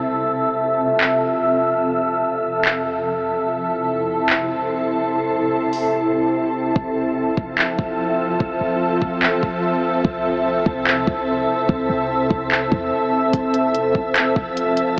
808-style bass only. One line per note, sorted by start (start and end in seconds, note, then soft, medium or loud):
6.76 7.35 F1 loud
7.37 7.57 F1 loud
7.79 8.38 F1 loud
8.40 8.60 F1 loud
8.61 9.00 F1 loud
9.02 9.41 F1 loud
9.43 9.86 F1 loud
9.84 10.04 E1 medium
10.05 10.64 C2 loud
10.66 11.06 C2 loud
11.07 11.47 C2 loud
11.69 11.89 C2 loud
11.89 12.29 C2 loud
12.30 12.70 C2 loud
12.72 12.91 E2 loud
13.33 13.93 F1 loud
13.95 14.15 F1 loud
14.36 14.95 F1 loud